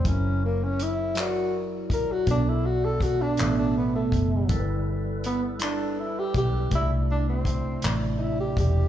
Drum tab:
HH |x-xx-x|x-xx-x|x-xx-x|x-xx-x|
CP |---x--|---x--|---x--|---x--|
BD |o----o|o-o--o|o----o|o-o--o|